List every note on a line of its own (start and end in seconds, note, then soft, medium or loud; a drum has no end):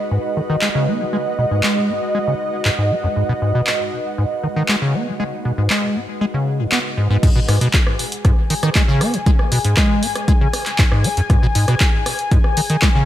0.00 7.23 G#3 medium
0.00 7.23 F#4 medium
0.00 7.23 B4 medium
0.00 7.24 D#5 medium
0.00 7.26 F#5 medium
0.11 0.18 G#2 medium
0.37 0.41 D#3 medium
0.50 0.56 D#3 loud
0.61 0.69 G#3 loud
0.61 clap loud
0.75 0.89 C#3 loud
0.88 1.02 B3 medium
1.00 1.04 D#3 medium
1.13 1.17 G#3 loud
1.38 1.45 B2 medium
1.51 1.62 G#2 medium
1.63 1.91 G#3 loud
1.63 clap loud
1.89 1.93 B3 medium
2.15 2.19 G#3 loud
2.27 2.34 C#3 medium
2.65 2.70 G#2 loud
2.65 clap loud
2.78 2.92 G#2 medium
2.91 2.95 B3 medium
3.04 3.08 F#2 medium
3.16 3.23 G#2 medium
3.29 3.33 B2 medium
3.42 3.52 G#2 medium
3.55 3.62 B2 loud
3.67 clap loud
4.18 4.25 G#2 medium
4.43 4.48 D#3 medium
4.56 4.63 D#3 loud
4.68 4.76 G#3 loud
4.68 clap loud
4.82 4.96 C#3 loud
4.94 5.09 B3 medium
5.07 5.11 D#3 medium
5.20 5.24 G#3 medium
5.45 5.52 B2 medium
5.58 5.68 G#2 medium
5.70 5.97 G#3 loud
5.70 clap loud
5.96 6.00 B3 medium
6.21 6.25 G#3 loud
6.34 6.61 C#3 medium
6.59 6.66 G#2 medium
6.72 6.79 B3 loud
6.72 clap loud
6.97 7.08 G#2 medium
7.10 7.17 G#2 loud
7.23 7.30 G#2 medium
7.23 13.05 G#5 medium
7.23 kick loud
7.23 closed hi-hat medium
7.23 crash loud
7.36 7.40 B2 loud
7.48 7.59 G#2 medium
7.48 cross-stick medium
7.48 open hi-hat loud
7.61 7.68 B2 loud
7.61 closed hi-hat medium
7.73 kick loud
7.73 clap loud
7.73 closed hi-hat medium
7.87 cross-stick medium
7.99 open hi-hat medium
8.12 closed hi-hat medium
8.25 8.32 G#2 medium
8.25 kick loud
8.25 cross-stick medium
8.25 closed hi-hat medium
8.50 8.54 D#3 medium
8.50 open hi-hat loud
8.63 8.70 D#3 loud
8.63 cross-stick medium
8.63 closed hi-hat medium
8.75 8.83 G#3 loud
8.75 kick loud
8.75 clap loud
8.75 closed hi-hat medium
8.88 9.03 C#3 loud
9.01 9.15 B3 medium
9.01 cross-stick medium
9.01 open hi-hat loud
9.14 9.18 D#3 medium
9.14 closed hi-hat medium
9.26 9.31 G#3 loud
9.26 kick loud
9.26 closed hi-hat medium
9.39 cross-stick medium
9.52 9.59 B2 medium
9.52 open hi-hat loud
9.65 9.75 G#2 medium
9.65 closed hi-hat medium
9.77 10.04 G#3 loud
9.77 kick loud
9.77 cross-stick medium
9.77 clap loud
9.77 closed hi-hat medium
10.03 10.07 B3 medium
10.03 open hi-hat loud
10.16 cross-stick medium
10.16 closed hi-hat medium
10.28 10.32 G#3 loud
10.28 kick loud
10.28 closed hi-hat medium
10.41 10.48 C#3 medium
10.53 cross-stick medium
10.53 open hi-hat loud
10.66 clap soft
10.66 closed hi-hat medium
10.78 10.83 G#2 loud
10.78 kick loud
10.78 clap loud
10.78 closed hi-hat medium
10.92 11.06 G#2 medium
10.92 cross-stick medium
11.04 11.09 B3 medium
11.04 open hi-hat loud
11.17 11.21 F#2 medium
11.17 closed hi-hat medium
11.30 11.37 G#2 medium
11.30 kick loud
11.30 cross-stick medium
11.30 closed hi-hat medium
11.43 11.47 B2 loud
11.55 11.66 G#2 medium
11.55 open hi-hat loud
11.68 11.75 B2 loud
11.68 cross-stick medium
11.68 closed hi-hat medium
11.80 kick loud
11.80 clap loud
11.80 closed hi-hat medium
12.06 cross-stick medium
12.06 open hi-hat loud
12.19 closed hi-hat medium
12.31 12.39 G#2 medium
12.31 kick loud
12.31 closed hi-hat medium
12.44 cross-stick medium
12.57 12.61 D#3 medium
12.57 open hi-hat loud
12.70 12.77 D#3 loud
12.70 closed hi-hat medium
12.82 12.89 G#3 loud
12.82 kick loud
12.82 cross-stick medium
12.82 clap loud
12.82 closed hi-hat soft
12.95 13.05 C#3 loud